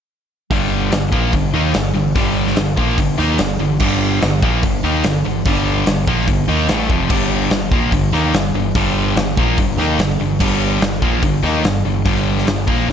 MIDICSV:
0, 0, Header, 1, 4, 480
1, 0, Start_track
1, 0, Key_signature, -2, "minor"
1, 0, Tempo, 412088
1, 595, Time_signature, 4, 2, 24, 8
1, 15055, End_track
2, 0, Start_track
2, 0, Title_t, "Distorted electric guitar"
2, 0, Program_c, 0, 30
2, 594, Note_on_c, 0, 43, 100
2, 594, Note_on_c, 0, 50, 103
2, 597, Note_on_c, 0, 55, 110
2, 1050, Note_off_c, 0, 43, 0
2, 1057, Note_off_c, 0, 50, 0
2, 1064, Note_on_c, 0, 43, 66
2, 1069, Note_off_c, 0, 55, 0
2, 1071, Note_on_c, 0, 50, 69
2, 1261, Note_off_c, 0, 43, 0
2, 1265, Note_off_c, 0, 50, 0
2, 1300, Note_on_c, 0, 46, 84
2, 1305, Note_on_c, 0, 53, 84
2, 1312, Note_on_c, 0, 58, 88
2, 1540, Note_off_c, 0, 46, 0
2, 1542, Note_off_c, 0, 53, 0
2, 1546, Note_off_c, 0, 58, 0
2, 1546, Note_on_c, 0, 43, 60
2, 1548, Note_on_c, 0, 50, 69
2, 1742, Note_off_c, 0, 43, 0
2, 1743, Note_off_c, 0, 50, 0
2, 1789, Note_on_c, 0, 51, 98
2, 1796, Note_on_c, 0, 63, 91
2, 1798, Note_on_c, 0, 58, 97
2, 2020, Note_off_c, 0, 51, 0
2, 2020, Note_on_c, 0, 43, 70
2, 2024, Note_on_c, 0, 50, 73
2, 2028, Note_off_c, 0, 58, 0
2, 2028, Note_off_c, 0, 63, 0
2, 2218, Note_off_c, 0, 43, 0
2, 2221, Note_off_c, 0, 50, 0
2, 2254, Note_on_c, 0, 43, 62
2, 2260, Note_on_c, 0, 50, 69
2, 2455, Note_off_c, 0, 43, 0
2, 2458, Note_off_c, 0, 50, 0
2, 2504, Note_on_c, 0, 43, 95
2, 2510, Note_on_c, 0, 50, 107
2, 2512, Note_on_c, 0, 55, 110
2, 2978, Note_off_c, 0, 43, 0
2, 2978, Note_off_c, 0, 50, 0
2, 2984, Note_off_c, 0, 55, 0
2, 2992, Note_on_c, 0, 43, 65
2, 2992, Note_on_c, 0, 50, 70
2, 3184, Note_off_c, 0, 43, 0
2, 3184, Note_off_c, 0, 50, 0
2, 3223, Note_on_c, 0, 53, 84
2, 3226, Note_on_c, 0, 46, 75
2, 3238, Note_on_c, 0, 58, 88
2, 3460, Note_off_c, 0, 53, 0
2, 3461, Note_off_c, 0, 46, 0
2, 3466, Note_on_c, 0, 43, 62
2, 3468, Note_off_c, 0, 58, 0
2, 3475, Note_on_c, 0, 50, 67
2, 3661, Note_off_c, 0, 43, 0
2, 3665, Note_off_c, 0, 50, 0
2, 3700, Note_on_c, 0, 51, 94
2, 3711, Note_on_c, 0, 58, 95
2, 3720, Note_on_c, 0, 63, 97
2, 3938, Note_off_c, 0, 51, 0
2, 3944, Note_off_c, 0, 58, 0
2, 3944, Note_on_c, 0, 43, 62
2, 3948, Note_off_c, 0, 63, 0
2, 3948, Note_on_c, 0, 50, 74
2, 4140, Note_off_c, 0, 43, 0
2, 4142, Note_off_c, 0, 50, 0
2, 4197, Note_on_c, 0, 43, 62
2, 4198, Note_on_c, 0, 50, 74
2, 4386, Note_off_c, 0, 43, 0
2, 4386, Note_off_c, 0, 50, 0
2, 4428, Note_on_c, 0, 43, 91
2, 4435, Note_on_c, 0, 50, 107
2, 4435, Note_on_c, 0, 55, 117
2, 4899, Note_off_c, 0, 50, 0
2, 4902, Note_off_c, 0, 43, 0
2, 4906, Note_off_c, 0, 55, 0
2, 4913, Note_on_c, 0, 50, 76
2, 4917, Note_on_c, 0, 43, 66
2, 5104, Note_off_c, 0, 50, 0
2, 5106, Note_off_c, 0, 43, 0
2, 5152, Note_on_c, 0, 46, 85
2, 5157, Note_on_c, 0, 53, 87
2, 5161, Note_on_c, 0, 58, 80
2, 5384, Note_off_c, 0, 46, 0
2, 5387, Note_off_c, 0, 53, 0
2, 5388, Note_off_c, 0, 58, 0
2, 5400, Note_on_c, 0, 43, 65
2, 5402, Note_on_c, 0, 50, 67
2, 5587, Note_off_c, 0, 43, 0
2, 5588, Note_off_c, 0, 50, 0
2, 5634, Note_on_c, 0, 51, 92
2, 5646, Note_on_c, 0, 63, 91
2, 5647, Note_on_c, 0, 58, 100
2, 5865, Note_off_c, 0, 51, 0
2, 5871, Note_off_c, 0, 63, 0
2, 5872, Note_off_c, 0, 58, 0
2, 5877, Note_on_c, 0, 43, 65
2, 5883, Note_on_c, 0, 50, 70
2, 6066, Note_off_c, 0, 43, 0
2, 6069, Note_off_c, 0, 50, 0
2, 6123, Note_on_c, 0, 43, 62
2, 6132, Note_on_c, 0, 50, 70
2, 6309, Note_off_c, 0, 43, 0
2, 6314, Note_off_c, 0, 50, 0
2, 6358, Note_on_c, 0, 43, 91
2, 6364, Note_on_c, 0, 50, 103
2, 6372, Note_on_c, 0, 55, 102
2, 6823, Note_off_c, 0, 43, 0
2, 6824, Note_off_c, 0, 50, 0
2, 6834, Note_off_c, 0, 55, 0
2, 6837, Note_on_c, 0, 43, 64
2, 6838, Note_on_c, 0, 50, 73
2, 7026, Note_off_c, 0, 43, 0
2, 7026, Note_off_c, 0, 50, 0
2, 7079, Note_on_c, 0, 46, 84
2, 7084, Note_on_c, 0, 53, 90
2, 7088, Note_on_c, 0, 58, 83
2, 7307, Note_off_c, 0, 46, 0
2, 7308, Note_on_c, 0, 43, 66
2, 7310, Note_off_c, 0, 53, 0
2, 7312, Note_off_c, 0, 58, 0
2, 7312, Note_on_c, 0, 50, 66
2, 7501, Note_off_c, 0, 43, 0
2, 7503, Note_off_c, 0, 50, 0
2, 7547, Note_on_c, 0, 51, 94
2, 7555, Note_on_c, 0, 58, 97
2, 7556, Note_on_c, 0, 63, 96
2, 7781, Note_off_c, 0, 51, 0
2, 7785, Note_on_c, 0, 45, 90
2, 7786, Note_off_c, 0, 58, 0
2, 7786, Note_off_c, 0, 63, 0
2, 7791, Note_on_c, 0, 52, 89
2, 7802, Note_on_c, 0, 57, 107
2, 8021, Note_off_c, 0, 45, 0
2, 8024, Note_off_c, 0, 52, 0
2, 8029, Note_off_c, 0, 57, 0
2, 8030, Note_on_c, 0, 41, 87
2, 8038, Note_on_c, 0, 48, 95
2, 8043, Note_on_c, 0, 53, 89
2, 8256, Note_off_c, 0, 41, 0
2, 8260, Note_on_c, 0, 43, 102
2, 8267, Note_off_c, 0, 48, 0
2, 8270, Note_off_c, 0, 53, 0
2, 8273, Note_on_c, 0, 50, 100
2, 8280, Note_on_c, 0, 55, 106
2, 8739, Note_off_c, 0, 43, 0
2, 8745, Note_off_c, 0, 50, 0
2, 8749, Note_off_c, 0, 55, 0
2, 8753, Note_on_c, 0, 43, 66
2, 8760, Note_on_c, 0, 50, 69
2, 8944, Note_off_c, 0, 43, 0
2, 8948, Note_off_c, 0, 50, 0
2, 8993, Note_on_c, 0, 46, 80
2, 8996, Note_on_c, 0, 53, 83
2, 8998, Note_on_c, 0, 58, 91
2, 9225, Note_off_c, 0, 46, 0
2, 9227, Note_off_c, 0, 53, 0
2, 9228, Note_off_c, 0, 58, 0
2, 9239, Note_on_c, 0, 43, 65
2, 9243, Note_on_c, 0, 50, 74
2, 9427, Note_off_c, 0, 43, 0
2, 9430, Note_off_c, 0, 50, 0
2, 9470, Note_on_c, 0, 51, 98
2, 9473, Note_on_c, 0, 58, 93
2, 9480, Note_on_c, 0, 63, 98
2, 9704, Note_off_c, 0, 51, 0
2, 9706, Note_off_c, 0, 58, 0
2, 9709, Note_off_c, 0, 63, 0
2, 9720, Note_on_c, 0, 43, 66
2, 9726, Note_on_c, 0, 50, 71
2, 9908, Note_off_c, 0, 43, 0
2, 9911, Note_off_c, 0, 50, 0
2, 9959, Note_on_c, 0, 43, 63
2, 9967, Note_on_c, 0, 50, 65
2, 10148, Note_off_c, 0, 43, 0
2, 10152, Note_off_c, 0, 50, 0
2, 10195, Note_on_c, 0, 43, 102
2, 10195, Note_on_c, 0, 50, 98
2, 10204, Note_on_c, 0, 55, 105
2, 10667, Note_off_c, 0, 43, 0
2, 10667, Note_off_c, 0, 50, 0
2, 10672, Note_off_c, 0, 55, 0
2, 10682, Note_on_c, 0, 43, 68
2, 10686, Note_on_c, 0, 50, 75
2, 10870, Note_off_c, 0, 43, 0
2, 10872, Note_off_c, 0, 50, 0
2, 10928, Note_on_c, 0, 46, 80
2, 10935, Note_on_c, 0, 58, 99
2, 10936, Note_on_c, 0, 53, 90
2, 11154, Note_off_c, 0, 46, 0
2, 11157, Note_off_c, 0, 58, 0
2, 11158, Note_off_c, 0, 53, 0
2, 11176, Note_on_c, 0, 43, 67
2, 11182, Note_on_c, 0, 50, 71
2, 11357, Note_off_c, 0, 43, 0
2, 11360, Note_off_c, 0, 50, 0
2, 11402, Note_on_c, 0, 51, 83
2, 11402, Note_on_c, 0, 58, 91
2, 11407, Note_on_c, 0, 63, 91
2, 11631, Note_off_c, 0, 51, 0
2, 11631, Note_off_c, 0, 58, 0
2, 11634, Note_off_c, 0, 63, 0
2, 11647, Note_on_c, 0, 43, 62
2, 11648, Note_on_c, 0, 50, 75
2, 11833, Note_off_c, 0, 43, 0
2, 11833, Note_off_c, 0, 50, 0
2, 11888, Note_on_c, 0, 43, 61
2, 11896, Note_on_c, 0, 50, 70
2, 12074, Note_off_c, 0, 43, 0
2, 12077, Note_off_c, 0, 50, 0
2, 12115, Note_on_c, 0, 43, 107
2, 12120, Note_on_c, 0, 50, 97
2, 12123, Note_on_c, 0, 55, 116
2, 12583, Note_off_c, 0, 43, 0
2, 12591, Note_off_c, 0, 50, 0
2, 12592, Note_off_c, 0, 55, 0
2, 12597, Note_on_c, 0, 43, 67
2, 12604, Note_on_c, 0, 50, 71
2, 12788, Note_off_c, 0, 43, 0
2, 12792, Note_off_c, 0, 50, 0
2, 12835, Note_on_c, 0, 46, 77
2, 12842, Note_on_c, 0, 53, 86
2, 12845, Note_on_c, 0, 58, 93
2, 13069, Note_off_c, 0, 46, 0
2, 13072, Note_off_c, 0, 53, 0
2, 13074, Note_off_c, 0, 58, 0
2, 13081, Note_on_c, 0, 50, 79
2, 13084, Note_on_c, 0, 43, 63
2, 13271, Note_off_c, 0, 50, 0
2, 13273, Note_off_c, 0, 43, 0
2, 13309, Note_on_c, 0, 51, 88
2, 13314, Note_on_c, 0, 58, 98
2, 13319, Note_on_c, 0, 63, 110
2, 13546, Note_off_c, 0, 51, 0
2, 13549, Note_off_c, 0, 58, 0
2, 13551, Note_off_c, 0, 63, 0
2, 13552, Note_on_c, 0, 43, 69
2, 13561, Note_on_c, 0, 50, 69
2, 13747, Note_off_c, 0, 43, 0
2, 13751, Note_off_c, 0, 50, 0
2, 13802, Note_on_c, 0, 50, 62
2, 13804, Note_on_c, 0, 43, 67
2, 13992, Note_off_c, 0, 50, 0
2, 13993, Note_off_c, 0, 43, 0
2, 14033, Note_on_c, 0, 43, 102
2, 14037, Note_on_c, 0, 50, 103
2, 14045, Note_on_c, 0, 55, 112
2, 14502, Note_off_c, 0, 43, 0
2, 14506, Note_off_c, 0, 50, 0
2, 14515, Note_off_c, 0, 55, 0
2, 14516, Note_on_c, 0, 43, 61
2, 14520, Note_on_c, 0, 50, 75
2, 14710, Note_off_c, 0, 43, 0
2, 14712, Note_off_c, 0, 50, 0
2, 14762, Note_on_c, 0, 46, 72
2, 14762, Note_on_c, 0, 53, 86
2, 14774, Note_on_c, 0, 58, 82
2, 14995, Note_off_c, 0, 46, 0
2, 14995, Note_off_c, 0, 53, 0
2, 15000, Note_off_c, 0, 58, 0
2, 15011, Note_on_c, 0, 50, 72
2, 15014, Note_on_c, 0, 43, 69
2, 15055, Note_off_c, 0, 43, 0
2, 15055, Note_off_c, 0, 50, 0
2, 15055, End_track
3, 0, Start_track
3, 0, Title_t, "Picked electric bass"
3, 0, Program_c, 1, 34
3, 594, Note_on_c, 1, 31, 92
3, 1041, Note_off_c, 1, 31, 0
3, 1070, Note_on_c, 1, 31, 79
3, 1295, Note_off_c, 1, 31, 0
3, 1311, Note_on_c, 1, 34, 88
3, 1536, Note_off_c, 1, 34, 0
3, 1546, Note_on_c, 1, 31, 83
3, 1772, Note_off_c, 1, 31, 0
3, 1781, Note_on_c, 1, 39, 91
3, 2010, Note_off_c, 1, 39, 0
3, 2033, Note_on_c, 1, 31, 78
3, 2256, Note_off_c, 1, 31, 0
3, 2271, Note_on_c, 1, 31, 78
3, 2495, Note_off_c, 1, 31, 0
3, 2510, Note_on_c, 1, 31, 99
3, 2957, Note_off_c, 1, 31, 0
3, 2998, Note_on_c, 1, 31, 80
3, 3218, Note_off_c, 1, 31, 0
3, 3231, Note_on_c, 1, 34, 87
3, 3454, Note_off_c, 1, 34, 0
3, 3471, Note_on_c, 1, 31, 86
3, 3694, Note_off_c, 1, 31, 0
3, 3703, Note_on_c, 1, 39, 95
3, 3930, Note_off_c, 1, 39, 0
3, 3948, Note_on_c, 1, 31, 78
3, 4173, Note_off_c, 1, 31, 0
3, 4188, Note_on_c, 1, 31, 77
3, 4413, Note_off_c, 1, 31, 0
3, 4436, Note_on_c, 1, 31, 91
3, 4880, Note_off_c, 1, 31, 0
3, 4915, Note_on_c, 1, 31, 84
3, 5136, Note_off_c, 1, 31, 0
3, 5153, Note_on_c, 1, 34, 89
3, 5375, Note_off_c, 1, 34, 0
3, 5396, Note_on_c, 1, 31, 85
3, 5617, Note_off_c, 1, 31, 0
3, 5638, Note_on_c, 1, 39, 94
3, 5858, Note_off_c, 1, 39, 0
3, 5879, Note_on_c, 1, 31, 74
3, 6098, Note_off_c, 1, 31, 0
3, 6127, Note_on_c, 1, 31, 76
3, 6343, Note_off_c, 1, 31, 0
3, 6355, Note_on_c, 1, 31, 97
3, 6799, Note_off_c, 1, 31, 0
3, 6834, Note_on_c, 1, 31, 83
3, 7056, Note_off_c, 1, 31, 0
3, 7078, Note_on_c, 1, 34, 86
3, 7298, Note_off_c, 1, 34, 0
3, 7312, Note_on_c, 1, 31, 84
3, 7535, Note_off_c, 1, 31, 0
3, 7555, Note_on_c, 1, 39, 88
3, 7776, Note_off_c, 1, 39, 0
3, 7798, Note_on_c, 1, 33, 94
3, 8018, Note_off_c, 1, 33, 0
3, 8034, Note_on_c, 1, 29, 89
3, 8256, Note_off_c, 1, 29, 0
3, 8268, Note_on_c, 1, 31, 96
3, 8716, Note_off_c, 1, 31, 0
3, 8734, Note_on_c, 1, 31, 84
3, 8965, Note_off_c, 1, 31, 0
3, 8983, Note_on_c, 1, 34, 92
3, 9210, Note_off_c, 1, 34, 0
3, 9225, Note_on_c, 1, 31, 84
3, 9451, Note_off_c, 1, 31, 0
3, 9463, Note_on_c, 1, 39, 92
3, 9691, Note_off_c, 1, 39, 0
3, 9708, Note_on_c, 1, 31, 79
3, 9933, Note_off_c, 1, 31, 0
3, 9948, Note_on_c, 1, 31, 77
3, 10174, Note_off_c, 1, 31, 0
3, 10191, Note_on_c, 1, 31, 96
3, 10639, Note_off_c, 1, 31, 0
3, 10664, Note_on_c, 1, 31, 83
3, 10892, Note_off_c, 1, 31, 0
3, 10917, Note_on_c, 1, 34, 84
3, 11139, Note_off_c, 1, 34, 0
3, 11161, Note_on_c, 1, 31, 82
3, 11369, Note_off_c, 1, 31, 0
3, 11376, Note_on_c, 1, 39, 90
3, 11608, Note_off_c, 1, 39, 0
3, 11620, Note_on_c, 1, 31, 84
3, 11850, Note_off_c, 1, 31, 0
3, 11863, Note_on_c, 1, 31, 77
3, 12092, Note_off_c, 1, 31, 0
3, 12117, Note_on_c, 1, 31, 99
3, 12563, Note_off_c, 1, 31, 0
3, 12590, Note_on_c, 1, 31, 81
3, 12816, Note_off_c, 1, 31, 0
3, 12837, Note_on_c, 1, 34, 89
3, 13060, Note_off_c, 1, 34, 0
3, 13078, Note_on_c, 1, 31, 84
3, 13301, Note_off_c, 1, 31, 0
3, 13321, Note_on_c, 1, 39, 103
3, 13542, Note_off_c, 1, 39, 0
3, 13562, Note_on_c, 1, 31, 83
3, 13783, Note_off_c, 1, 31, 0
3, 13802, Note_on_c, 1, 31, 78
3, 14023, Note_off_c, 1, 31, 0
3, 14041, Note_on_c, 1, 31, 94
3, 14487, Note_off_c, 1, 31, 0
3, 14526, Note_on_c, 1, 31, 83
3, 14746, Note_off_c, 1, 31, 0
3, 14766, Note_on_c, 1, 34, 93
3, 14987, Note_off_c, 1, 34, 0
3, 14995, Note_on_c, 1, 31, 81
3, 15055, Note_off_c, 1, 31, 0
3, 15055, End_track
4, 0, Start_track
4, 0, Title_t, "Drums"
4, 591, Note_on_c, 9, 36, 100
4, 592, Note_on_c, 9, 46, 54
4, 707, Note_off_c, 9, 36, 0
4, 709, Note_off_c, 9, 46, 0
4, 1070, Note_on_c, 9, 46, 61
4, 1079, Note_on_c, 9, 38, 114
4, 1186, Note_off_c, 9, 46, 0
4, 1195, Note_off_c, 9, 38, 0
4, 1310, Note_on_c, 9, 36, 104
4, 1427, Note_off_c, 9, 36, 0
4, 1548, Note_on_c, 9, 46, 61
4, 1550, Note_on_c, 9, 36, 84
4, 1664, Note_off_c, 9, 46, 0
4, 1667, Note_off_c, 9, 36, 0
4, 2026, Note_on_c, 9, 46, 65
4, 2036, Note_on_c, 9, 38, 112
4, 2143, Note_off_c, 9, 46, 0
4, 2152, Note_off_c, 9, 38, 0
4, 2509, Note_on_c, 9, 46, 57
4, 2512, Note_on_c, 9, 36, 103
4, 2626, Note_off_c, 9, 46, 0
4, 2628, Note_off_c, 9, 36, 0
4, 2879, Note_on_c, 9, 38, 32
4, 2985, Note_on_c, 9, 46, 61
4, 2994, Note_off_c, 9, 38, 0
4, 2994, Note_on_c, 9, 38, 119
4, 3101, Note_off_c, 9, 46, 0
4, 3111, Note_off_c, 9, 38, 0
4, 3231, Note_on_c, 9, 36, 98
4, 3348, Note_off_c, 9, 36, 0
4, 3470, Note_on_c, 9, 36, 93
4, 3470, Note_on_c, 9, 46, 56
4, 3586, Note_off_c, 9, 46, 0
4, 3587, Note_off_c, 9, 36, 0
4, 3719, Note_on_c, 9, 38, 31
4, 3836, Note_off_c, 9, 38, 0
4, 3940, Note_on_c, 9, 46, 57
4, 3950, Note_on_c, 9, 38, 107
4, 4057, Note_off_c, 9, 46, 0
4, 4066, Note_off_c, 9, 38, 0
4, 4422, Note_on_c, 9, 49, 89
4, 4432, Note_on_c, 9, 36, 101
4, 4539, Note_off_c, 9, 49, 0
4, 4548, Note_off_c, 9, 36, 0
4, 4913, Note_on_c, 9, 46, 60
4, 4922, Note_on_c, 9, 38, 113
4, 5029, Note_off_c, 9, 46, 0
4, 5038, Note_off_c, 9, 38, 0
4, 5154, Note_on_c, 9, 36, 110
4, 5271, Note_off_c, 9, 36, 0
4, 5391, Note_on_c, 9, 46, 64
4, 5395, Note_on_c, 9, 36, 90
4, 5507, Note_off_c, 9, 46, 0
4, 5512, Note_off_c, 9, 36, 0
4, 5867, Note_on_c, 9, 46, 62
4, 5877, Note_on_c, 9, 38, 113
4, 5984, Note_off_c, 9, 46, 0
4, 5993, Note_off_c, 9, 38, 0
4, 6351, Note_on_c, 9, 46, 61
4, 6355, Note_on_c, 9, 36, 99
4, 6467, Note_off_c, 9, 46, 0
4, 6472, Note_off_c, 9, 36, 0
4, 6831, Note_on_c, 9, 46, 65
4, 6840, Note_on_c, 9, 38, 105
4, 6947, Note_off_c, 9, 46, 0
4, 6956, Note_off_c, 9, 38, 0
4, 7076, Note_on_c, 9, 36, 104
4, 7192, Note_off_c, 9, 36, 0
4, 7310, Note_on_c, 9, 46, 61
4, 7312, Note_on_c, 9, 36, 97
4, 7426, Note_off_c, 9, 46, 0
4, 7428, Note_off_c, 9, 36, 0
4, 7788, Note_on_c, 9, 46, 52
4, 7797, Note_on_c, 9, 38, 118
4, 7904, Note_off_c, 9, 46, 0
4, 7913, Note_off_c, 9, 38, 0
4, 8033, Note_on_c, 9, 36, 106
4, 8150, Note_off_c, 9, 36, 0
4, 8270, Note_on_c, 9, 36, 103
4, 8270, Note_on_c, 9, 57, 94
4, 8386, Note_off_c, 9, 36, 0
4, 8386, Note_off_c, 9, 57, 0
4, 8742, Note_on_c, 9, 46, 59
4, 8751, Note_on_c, 9, 38, 119
4, 8858, Note_off_c, 9, 46, 0
4, 8867, Note_off_c, 9, 38, 0
4, 8987, Note_on_c, 9, 36, 104
4, 9103, Note_off_c, 9, 36, 0
4, 9228, Note_on_c, 9, 36, 94
4, 9231, Note_on_c, 9, 46, 59
4, 9345, Note_off_c, 9, 36, 0
4, 9348, Note_off_c, 9, 46, 0
4, 9482, Note_on_c, 9, 38, 32
4, 9599, Note_off_c, 9, 38, 0
4, 9712, Note_on_c, 9, 46, 60
4, 9722, Note_on_c, 9, 38, 114
4, 9829, Note_off_c, 9, 46, 0
4, 9838, Note_off_c, 9, 38, 0
4, 10194, Note_on_c, 9, 36, 101
4, 10196, Note_on_c, 9, 46, 57
4, 10310, Note_off_c, 9, 36, 0
4, 10313, Note_off_c, 9, 46, 0
4, 10677, Note_on_c, 9, 46, 59
4, 10686, Note_on_c, 9, 38, 118
4, 10793, Note_off_c, 9, 46, 0
4, 10802, Note_off_c, 9, 38, 0
4, 10919, Note_on_c, 9, 36, 105
4, 11036, Note_off_c, 9, 36, 0
4, 11158, Note_on_c, 9, 36, 93
4, 11158, Note_on_c, 9, 46, 62
4, 11275, Note_off_c, 9, 36, 0
4, 11275, Note_off_c, 9, 46, 0
4, 11420, Note_on_c, 9, 38, 31
4, 11536, Note_off_c, 9, 38, 0
4, 11638, Note_on_c, 9, 46, 58
4, 11647, Note_on_c, 9, 38, 103
4, 11754, Note_off_c, 9, 46, 0
4, 11764, Note_off_c, 9, 38, 0
4, 12119, Note_on_c, 9, 36, 101
4, 12122, Note_on_c, 9, 57, 96
4, 12235, Note_off_c, 9, 36, 0
4, 12238, Note_off_c, 9, 57, 0
4, 12598, Note_on_c, 9, 46, 57
4, 12608, Note_on_c, 9, 38, 119
4, 12715, Note_off_c, 9, 46, 0
4, 12724, Note_off_c, 9, 38, 0
4, 12838, Note_on_c, 9, 36, 105
4, 12954, Note_off_c, 9, 36, 0
4, 13078, Note_on_c, 9, 36, 91
4, 13080, Note_on_c, 9, 46, 56
4, 13194, Note_off_c, 9, 36, 0
4, 13196, Note_off_c, 9, 46, 0
4, 13337, Note_on_c, 9, 38, 31
4, 13453, Note_off_c, 9, 38, 0
4, 13562, Note_on_c, 9, 46, 60
4, 13571, Note_on_c, 9, 38, 112
4, 13678, Note_off_c, 9, 46, 0
4, 13688, Note_off_c, 9, 38, 0
4, 14043, Note_on_c, 9, 36, 96
4, 14048, Note_on_c, 9, 46, 59
4, 14159, Note_off_c, 9, 36, 0
4, 14165, Note_off_c, 9, 46, 0
4, 14420, Note_on_c, 9, 38, 32
4, 14527, Note_on_c, 9, 46, 63
4, 14536, Note_off_c, 9, 38, 0
4, 14536, Note_on_c, 9, 38, 113
4, 14644, Note_off_c, 9, 46, 0
4, 14653, Note_off_c, 9, 38, 0
4, 14766, Note_on_c, 9, 36, 100
4, 14883, Note_off_c, 9, 36, 0
4, 15055, End_track
0, 0, End_of_file